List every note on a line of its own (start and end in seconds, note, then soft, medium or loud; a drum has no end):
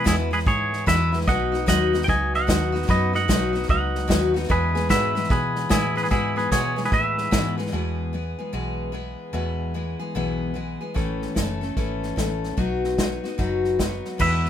0.04 0.31 E2 medium
0.04 0.45 E2 medium
0.04 0.31 B2 medium
0.04 0.31 E3 medium
0.04 0.31 G#3 medium
0.04 0.30 B3 medium
0.04 0.29 E4 medium
0.04 0.14 E4 medium
0.04 0.14 G#4 medium
0.04 kick medium
0.04 snare loud
0.04 hi-hat pedal medium
0.31 0.44 E3 soft
0.31 0.45 G#3 soft
0.31 0.46 B3 soft
0.31 0.46 E4 medium
0.31 0.38 G#4 medium
0.31 0.39 B4 medium
0.31 snare soft
0.39 snare soft
0.45 0.86 G#2 medium
0.45 0.86 E3 medium
0.45 0.86 G#3 medium
0.45 0.87 B3 medium
0.45 0.87 E4 medium
0.45 0.84 G#4 medium
0.45 0.85 C#5 medium
0.45 kick loud
0.45 snare soft
0.73 snare soft
0.86 1.12 E2 medium
0.86 1.26 E2 medium
0.86 1.12 B2 medium
0.86 1.13 E3 medium
0.86 1.13 G#3 medium
0.86 1.12 B3 medium
0.86 1.11 E4 medium
0.86 1.18 B4 medium
0.86 1.18 E5 loud
0.86 kick medium
0.86 snare loud
0.86 hi-hat pedal medium
1.12 1.27 E3 soft
1.12 1.27 G#3 soft
1.12 1.27 B3 soft
1.12 1.27 E4 medium
1.12 snare soft
1.21 snare soft
1.27 1.66 B1 medium
1.27 1.53 B2 medium
1.27 1.53 F#3 medium
1.27 1.53 B3 medium
1.27 1.52 D#4 medium
1.27 1.51 F#4 medium
1.27 1.65 D#5 medium
1.27 1.68 F#5 loud
1.27 kick loud
1.27 snare soft
1.52 1.66 B3 soft
1.52 1.66 D#4 soft
1.52 1.66 F#4 medium
1.52 snare soft
1.66 2.07 D#2 medium
1.66 1.93 B2 medium
1.66 1.93 F#3 medium
1.66 1.93 B3 medium
1.66 1.93 D#4 medium
1.66 1.92 F#4 medium
1.66 2.02 D#5 medium
1.66 2.04 F#5 loud
1.66 kick medium
1.66 snare loud
1.66 hi-hat pedal medium
1.93 2.06 B3 soft
1.93 2.07 D#4 soft
1.93 2.07 F#4 medium
1.93 snare soft
2.02 2.08 G5 medium
2.02 snare soft
2.06 2.47 C#2 medium
2.06 2.46 F#3 medium
2.06 2.48 B3 medium
2.06 2.47 D#4 medium
2.06 2.48 F#4 medium
2.06 2.32 D#5 medium
2.06 2.35 G#5 loud
2.06 kick loud
2.06 snare soft
2.34 2.85 D#5 medium
2.34 2.91 F#5 medium
2.34 snare soft
2.47 2.87 D#2 medium
2.47 2.73 B2 medium
2.47 2.74 F#3 medium
2.47 2.73 B3 medium
2.47 2.72 D#4 medium
2.47 2.71 F#4 medium
2.47 kick medium
2.47 snare loud
2.47 hi-hat pedal medium
2.72 2.87 B3 soft
2.72 2.88 D#4 soft
2.72 2.88 F#4 medium
2.72 snare soft
2.82 snare soft
2.88 3.28 F#2 medium
2.88 3.14 B2 medium
2.88 3.14 F#3 medium
2.88 3.14 B3 medium
2.88 3.13 D#4 medium
2.88 3.12 F#4 medium
2.88 3.13 B4 medium
2.88 3.14 D#5 medium
2.88 kick loud
2.88 snare soft
3.13 3.28 B3 soft
3.13 3.28 D#4 medium
3.13 3.28 F#4 medium
3.13 3.66 D#5 medium
3.13 3.66 F#5 loud
3.13 snare soft
3.28 3.68 B1 medium
3.28 3.54 B2 medium
3.28 3.54 F#3 medium
3.28 3.55 B3 medium
3.28 3.53 D#4 medium
3.28 3.52 F#4 medium
3.28 kick medium
3.28 snare loud
3.28 hi-hat pedal medium
3.53 3.68 B3 soft
3.53 3.69 D#4 medium
3.53 3.68 F#4 medium
3.53 snare soft
3.63 snare soft
3.68 4.08 C#2 medium
3.68 4.07 F#3 medium
3.68 4.08 B3 medium
3.68 4.08 D#4 medium
3.68 4.08 F#4 medium
3.68 4.32 D#5 medium
3.68 4.32 F#5 medium
3.68 kick loud
3.68 snare soft
3.95 snare soft
4.08 4.49 D#2 loud
4.08 4.34 B2 medium
4.08 4.34 F#3 medium
4.08 4.35 B3 medium
4.08 4.35 D#4 medium
4.08 4.33 F#4 medium
4.08 kick medium
4.08 snare loud
4.08 hi-hat pedal medium
4.34 4.49 B3 soft
4.34 4.50 D#4 medium
4.34 4.49 F#4 medium
4.34 snare soft
4.43 snare soft
4.49 4.75 E2 medium
4.49 4.89 E2 loud
4.49 4.75 B2 medium
4.49 4.75 E3 medium
4.49 4.75 G#3 medium
4.49 4.74 B3 medium
4.49 4.74 G#4 medium
4.49 4.88 G#4 medium
4.49 4.88 B4 medium
4.49 kick loud
4.49 snare soft
4.75 4.89 E3 soft
4.75 4.89 G#3 soft
4.75 4.89 B3 medium
4.75 4.90 G#4 medium
4.75 snare soft
4.89 5.15 E2 medium
4.89 5.29 G#2 medium
4.89 5.15 B2 medium
4.89 5.16 E3 medium
4.89 5.15 G#3 medium
4.89 5.15 B3 medium
4.89 5.14 G#4 medium
4.89 5.27 B4 medium
4.89 5.32 E5 loud
4.89 kick medium
4.89 snare loud
4.89 hi-hat pedal medium
5.15 5.28 E3 soft
5.15 5.28 G#3 medium
5.15 5.29 B3 medium
5.15 5.30 G#4 soft
5.15 snare soft
5.23 snare soft
5.29 5.69 B2 medium
5.29 5.70 E3 medium
5.29 5.70 G#3 medium
5.29 5.70 B3 medium
5.29 5.68 G#4 medium
5.29 5.71 G#4 medium
5.29 5.68 B4 medium
5.29 kick loud
5.29 snare soft
5.56 snare soft
5.69 5.96 E2 medium
5.69 6.09 A2 medium
5.69 5.96 B2 medium
5.69 5.96 E3 medium
5.69 5.96 G#3 medium
5.69 5.95 B3 medium
5.69 5.95 E4 medium
5.69 5.96 G#4 medium
5.69 5.94 G#4 loud
5.69 kick medium
5.69 snare loud
5.69 hi-hat pedal medium
5.95 6.10 E3 soft
5.95 6.10 G#3 soft
5.95 6.10 B3 soft
5.95 6.10 G#4 soft
5.95 6.03 G#4 medium
5.95 6.02 B4 medium
5.95 snare soft
6.03 6.07 G#4 medium
6.03 6.07 B4 medium
6.03 snare soft
6.10 6.36 E2 medium
6.10 6.50 G#2 medium
6.10 6.36 B2 medium
6.10 6.37 E3 medium
6.10 6.36 G#3 medium
6.10 6.35 B3 medium
6.10 6.35 E4 medium
6.10 6.35 G#4 medium
6.10 kick loud
6.10 snare soft
6.36 6.51 E3 soft
6.36 6.51 G#3 soft
6.36 6.51 B3 medium
6.36 6.51 G#4 medium
6.36 6.50 G#4 medium
6.36 6.50 B4 medium
6.36 snare soft
6.51 6.77 E2 medium
6.51 6.90 B2 medium
6.51 6.77 B2 medium
6.51 6.78 E3 medium
6.51 6.77 G#3 medium
6.51 6.76 B3 medium
6.51 6.82 G#4 medium
6.51 6.75 G#4 medium
6.51 6.82 C#5 medium
6.51 kick medium
6.51 snare loud
6.51 hi-hat pedal medium
6.76 6.90 E3 soft
6.76 6.91 G#3 soft
6.76 6.91 B3 medium
6.76 6.91 G#4 medium
6.76 snare soft
6.84 6.92 G#4 medium
6.84 6.92 B4 medium
6.84 snare soft
6.91 7.31 A2 medium
6.91 7.31 E3 medium
6.91 7.31 G#3 medium
6.91 7.31 B3 medium
6.91 7.32 G#4 medium
6.91 7.54 B4 medium
6.91 7.54 E5 medium
6.91 kick loud
6.91 snare soft
7.18 snare soft
7.31 7.57 E2 medium
7.31 7.71 G#2 medium
7.31 7.57 B2 medium
7.31 7.58 E3 medium
7.31 7.58 G#3 medium
7.31 7.57 B3 medium
7.31 7.56 G#4 medium
7.31 kick medium
7.31 snare loud
7.31 hi-hat pedal medium
7.58 7.72 E3 soft
7.58 7.72 G#3 medium
7.58 7.73 B3 medium
7.58 7.72 G#4 medium
7.58 snare soft
7.66 snare soft
7.72 8.13 E2 medium
7.72 8.34 E2 medium
7.72 8.13 B2 medium
7.72 8.12 E3 medium
7.72 8.13 G#3 medium
7.72 8.13 B3 medium
7.72 8.13 G#4 medium
8.13 8.39 E3 medium
8.13 8.39 G#3 medium
8.13 8.38 B3 medium
8.13 8.37 G#4 medium
8.39 8.52 E3 soft
8.39 8.53 G#3 soft
8.39 8.53 B3 soft
8.39 8.53 G#4 soft
8.53 9.14 B1 medium
8.53 8.93 E2 medium
8.53 8.93 B2 medium
8.53 8.92 E3 medium
8.53 8.92 G#3 medium
8.53 8.93 B3 medium
8.53 8.93 G#4 medium
8.92 9.33 E3 medium
8.92 9.33 G#3 medium
8.92 9.33 B3 medium
8.92 9.33 G#4 medium
9.33 9.74 E2 medium
9.33 9.95 E2 medium
9.33 9.74 B2 medium
9.33 9.74 E3 medium
9.33 9.73 G#3 medium
9.33 9.74 B3 medium
9.33 9.75 G#4 medium
9.74 10.00 E3 medium
9.74 10.00 G#3 medium
9.74 9.99 B3 medium
9.74 9.98 G#4 medium
9.99 10.14 E3 soft
9.99 10.15 G#3 soft
9.99 10.15 B3 medium
9.99 10.14 G#4 medium
10.15 10.76 B1 medium
10.15 10.55 E2 medium
10.15 10.55 B2 medium
10.15 10.53 E3 medium
10.15 10.54 G#3 medium
10.15 10.55 B3 medium
10.15 10.55 G#4 medium
10.54 10.80 E3 medium
10.54 10.81 G#3 medium
10.54 10.80 B3 medium
10.54 10.79 G#4 medium
10.81 10.93 E3 soft
10.81 10.95 G#3 soft
10.81 10.95 B3 soft
10.81 10.95 G#4 soft
10.94 11.26 A1 medium
10.94 11.36 A2 medium
10.94 11.34 E3 medium
10.94 11.35 A3 medium
10.94 11.35 C#4 medium
10.94 11.36 A4 medium
10.94 kick loud
10.94 snare soft
11.22 snare soft
11.35 11.71 F#1 medium
11.35 11.61 E3 medium
11.35 11.62 A3 medium
11.35 11.61 C#4 medium
11.35 11.60 A4 medium
11.35 kick medium
11.35 snare loud
11.35 hi-hat pedal medium
11.61 11.76 A3 soft
11.61 11.76 C#4 soft
11.61 11.76 A4 soft
11.61 snare soft
11.77 12.11 G#1 medium
11.77 12.15 E3 medium
11.77 12.16 A3 medium
11.77 12.17 C#4 medium
11.77 12.17 A4 medium
11.77 kick medium
11.77 snare soft
12.03 snare soft
12.16 12.52 A1 medium
12.16 12.57 E3 medium
12.16 12.57 A3 medium
12.16 12.58 C#4 medium
12.16 12.58 A4 medium
12.16 kick medium
12.16 snare loud
12.16 hi-hat pedal medium
12.44 snare soft
12.57 13.19 B1 medium
12.57 12.98 B2 medium
12.57 12.97 F#3 medium
12.57 12.98 B3 medium
12.57 12.98 D#4 medium
12.57 12.99 F#4 medium
12.57 kick loud
12.57 snare soft
12.84 snare soft
12.98 13.24 F#3 medium
12.98 13.25 B3 medium
12.98 13.24 D#4 medium
12.98 13.22 F#4 medium
12.98 kick medium
12.98 snare loud
12.98 hi-hat pedal medium
13.24 13.38 B3 soft
13.24 13.38 D#4 soft
13.24 13.38 F#4 soft
13.24 snare soft
13.38 14.00 F#1 medium
13.38 13.79 B2 medium
13.38 13.78 F#3 medium
13.38 13.78 B3 medium
13.38 13.79 D#4 medium
13.38 13.79 F#4 medium
13.38 kick medium
13.38 snare soft
13.65 snare soft
13.79 14.19 F#3 medium
13.79 14.19 B3 medium
13.79 14.19 D#4 medium
13.79 14.20 F#4 medium
13.79 kick medium
13.79 snare loud
13.79 hi-hat pedal medium
14.05 snare soft
14.18 14.50 E2 medium
14.18 14.50 B2 medium
14.18 14.50 E3 medium
14.18 14.50 G#3 medium
14.18 14.50 B3 medium
14.18 14.50 E4 medium
14.18 14.50 B4 medium
14.18 14.50 E5 loud
14.18 kick loud
14.18 snare soft
14.18 crash medium
14.46 snare soft